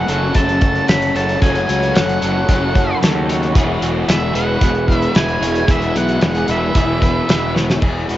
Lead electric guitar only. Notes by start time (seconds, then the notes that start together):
Already playing: F#5
0.35 A5
0.89 B5
1.16 A5
1.42 G#5
1.95 F#5
4.09 E5
4.36 F#5
4.96 E5
5.16 G#5
5.71 E5
5.97 F#5
6.51 E5